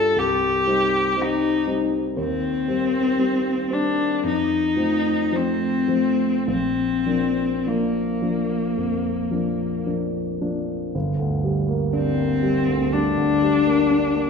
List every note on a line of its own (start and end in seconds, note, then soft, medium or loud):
0.00 0.18 G2 soft
0.00 0.18 G3 soft
0.00 0.19 D4 soft
0.00 0.19 F4 soft
0.00 0.20 A4 medium
0.16 0.65 C2 soft
0.16 1.23 G4 medium
0.67 1.13 G3 soft
0.67 1.13 C4 soft
0.67 1.13 D#4 soft
1.17 1.63 G3 soft
1.17 1.63 C4 soft
1.17 1.64 D#4 soft
1.21 1.69 D#4 medium
1.67 2.14 G3 soft
1.67 2.14 C4 soft
1.67 2.14 D#4 soft
2.17 2.67 D#2 soft
2.17 3.74 C4 medium
2.68 3.16 G3 soft
2.68 3.16 C4 soft
3.19 3.67 G3 soft
3.19 3.67 C4 soft
3.71 4.19 G3 soft
3.71 4.19 C4 soft
3.71 4.24 D4 medium
4.23 4.75 F2 soft
4.27 5.37 D#4 medium
4.76 5.27 F3 soft
4.76 5.27 A3 soft
4.76 5.27 C4 soft
5.32 5.84 F3 soft
5.32 5.84 A3 soft
5.32 5.84 C4 soft
5.36 6.49 C4 medium
5.88 6.42 F3 soft
5.88 6.43 A3 soft
5.88 6.43 C4 soft
6.47 7.05 A#1 soft
6.47 7.70 C4 medium
7.06 7.60 F3 soft
7.06 7.60 A#3 soft
7.06 7.61 D4 soft
7.66 8.17 F3 soft
7.66 8.17 A#3 soft
7.66 9.88 A#3 soft
7.66 8.17 D4 soft
8.22 8.72 F3 soft
8.22 8.73 A#3 soft
8.22 8.73 D4 soft
8.77 9.30 F2 soft
9.31 9.82 F3 soft
9.31 9.82 A#3 soft
9.31 9.83 D4 soft
9.86 10.38 F3 soft
9.86 10.38 A#3 soft
9.86 10.38 D4 soft
10.41 10.90 F3 soft
10.41 10.91 A#3 soft
10.41 10.91 D4 soft
10.95 14.30 G1 soft
11.19 11.59 D2 soft
11.44 11.84 G3 soft
11.69 12.08 A#3 soft
11.93 12.94 C4 medium
11.93 12.32 D4 soft
12.18 12.57 A#3 soft
12.43 12.82 G3 soft
12.69 13.07 D2 soft
12.92 13.32 G3 soft
12.92 14.30 D4 medium
13.17 13.56 D2 soft
13.42 13.81 G3 soft
13.67 14.06 A#3 soft
13.91 14.30 D4 soft
14.15 14.30 A#3 soft